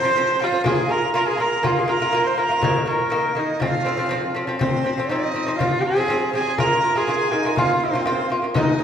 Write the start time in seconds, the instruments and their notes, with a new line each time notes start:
Already playing: horsehead fiddle C5, dizi C6
0.03 lute F3 C4, frame drum
0.16 lute F3 C4, frame drum
0.40 lute F3 C4, dizi F5
0.44 horsehead fiddle F4
0.52 lute F3 C4
0.64 lute A#3 F4, horsehead fiddle G#4, dizi G#5, frame drum
0.89 lute A#3 F4, horsehead fiddle A#4, dizi A#5
1.03 frame drum
1.14 lute A#3 F4, horsehead fiddle A#4, dizi A#5, frame drum
1.26 horsehead fiddle G#4, dizi G#5
1.38 lute A#3 F4, horsehead fiddle A#4, dizi C6, frame drum
1.42 dizi A#5
1.63 lute A#3 F4, dizi G#5, frame drum
1.67 horsehead fiddle F4, dizi F5
1.78 horsehead fiddle G#4
1.88 lute A#3 F4, horsehead fiddle A#4, dizi A#5
2.00 lute A#3 F4, frame drum
2.13 lute A#3 F4, frame drum
2.24 horsehead fiddle C5, dizi C6
2.37 lute A#3 F4, horsehead fiddle A#4, dizi C6
2.44 dizi A#5
2.49 lute A#3 F4
2.62 lute D#3 A#3, frame drum
2.86 lute D#3 A#3, horsehead fiddle A#4
3.00 frame drum
3.10 lute D#3 A#3, frame drum
3.35 lute D#3 A#3, horsehead fiddle D#4, dizi D#5, frame drum
3.60 lute F3 C4, horsehead fiddle F4, dizi G#5, frame drum
3.65 dizi F5
3.84 lute F3 C4, frame drum
3.97 lute F3 C4, frame drum
4.09 lute F3 C4, frame drum
4.35 lute F3 C4
4.47 lute F3 C4
4.59 lute F3 C4, horsehead fiddle C4, dizi C5, frame drum
4.84 lute F3 C4
4.98 lute F3 C4, frame drum
5.09 lute F3 C4, horsehead fiddle D#4, dizi D#5, frame drum
5.34 lute F3 C4, frame drum
5.46 lute F3 C4
5.56 lute F3, horsehead fiddle F4, dizi F5, frame drum
5.61 lute C4
5.83 horsehead fiddle G#4, dizi A#5
5.90 dizi G#5
5.97 lute F3 C4, frame drum
6.08 lute F3 C4, frame drum
6.33 lute F3 C4, horsehead fiddle G#4, dizi G#5
6.45 lute F3 C4
6.58 lute A#3 F4, horsehead fiddle A#4, dizi A#5, frame drum
6.83 lute A#3 F4
6.95 lute A#3 F4, horsehead fiddle G#4, dizi G#5, frame drum
7.07 lute A#3 F4, frame drum
7.32 lute A#3 F4, horsehead fiddle D#4, frame drum
7.45 lute A#3 F4
7.56 lute A#3 F4, horsehead fiddle F4, dizi F5, frame drum
7.84 horsehead fiddle C4, dizi D#5
7.90 lute A#3, dizi C5
7.94 lute F4, frame drum
8.05 lute A#3 F4, dizi C5, frame drum
8.30 lute A#3 F4
8.42 lute A#3 F4
8.54 lute G#3 D#4, horsehead fiddle D#4, dizi D#5, frame drum
8.79 lute G#3 D#4